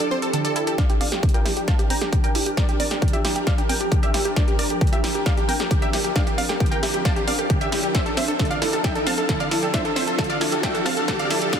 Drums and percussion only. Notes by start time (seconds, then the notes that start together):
0.22 closed hi-hat
0.33 closed hi-hat
0.45 closed hi-hat
0.56 closed hi-hat
0.67 closed hi-hat
0.78 kick, snare, closed hi-hat
0.90 closed hi-hat
1.01 open hi-hat
1.12 snare, closed hi-hat
1.23 kick, closed hi-hat
1.29 closed hi-hat
1.34 closed hi-hat
1.46 snare, open hi-hat
1.57 closed hi-hat
1.68 kick, snare, closed hi-hat
1.79 closed hi-hat
1.90 open hi-hat
2.01 snare, closed hi-hat
2.13 kick, closed hi-hat
2.24 closed hi-hat
2.35 open hi-hat
2.46 closed hi-hat
2.57 kick, snare, closed hi-hat
2.69 closed hi-hat
2.80 open hi-hat
2.91 snare, closed hi-hat
3.02 kick, closed hi-hat
3.08 closed hi-hat
3.13 closed hi-hat
3.25 snare, open hi-hat
3.36 closed hi-hat
3.47 kick, snare, closed hi-hat
3.58 closed hi-hat
3.69 open hi-hat
3.81 closed hi-hat
3.92 kick, closed hi-hat
4.03 closed hi-hat
4.14 snare, open hi-hat
4.25 closed hi-hat
4.36 kick, snare, closed hi-hat
4.48 closed hi-hat
4.59 open hi-hat
4.70 closed hi-hat
4.81 kick, closed hi-hat
4.87 closed hi-hat
4.93 closed hi-hat
5.04 snare, open hi-hat
5.15 closed hi-hat
5.26 kick, snare, closed hi-hat
5.37 closed hi-hat
5.49 open hi-hat
5.60 snare, closed hi-hat
5.71 kick, closed hi-hat
5.82 closed hi-hat
5.93 snare, open hi-hat
6.05 closed hi-hat
6.16 kick, snare, closed hi-hat
6.27 closed hi-hat
6.38 open hi-hat
6.49 snare, closed hi-hat
6.60 kick, closed hi-hat
6.66 closed hi-hat
6.72 closed hi-hat
6.83 snare, open hi-hat
6.94 closed hi-hat
7.05 kick, snare, closed hi-hat
7.16 closed hi-hat
7.28 open hi-hat
7.39 closed hi-hat
7.50 kick, closed hi-hat
7.61 closed hi-hat
7.72 snare, open hi-hat
7.84 closed hi-hat
7.95 kick, snare, closed hi-hat
8.06 closed hi-hat
8.17 snare, open hi-hat
8.28 closed hi-hat
8.39 kick, snare, closed hi-hat
8.45 closed hi-hat
8.51 closed hi-hat
8.62 snare, open hi-hat
8.73 closed hi-hat
8.84 kick, snare, closed hi-hat
8.95 closed hi-hat
9.07 snare, open hi-hat
9.18 closed hi-hat
9.29 kick, snare, closed hi-hat
9.40 closed hi-hat
9.51 snare, open hi-hat
9.63 closed hi-hat
9.74 kick, snare, closed hi-hat
9.85 closed hi-hat
9.96 snare, open hi-hat
10.08 closed hi-hat
10.19 kick, snare, closed hi-hat
10.24 closed hi-hat
10.30 closed hi-hat
10.41 snare, open hi-hat
10.52 closed hi-hat
10.63 kick, snare, closed hi-hat
10.75 closed hi-hat
10.86 snare, open hi-hat
10.97 closed hi-hat
11.08 kick, snare, closed hi-hat
11.19 closed hi-hat
11.30 snare, open hi-hat
11.42 closed hi-hat
11.53 kick, snare, closed hi-hat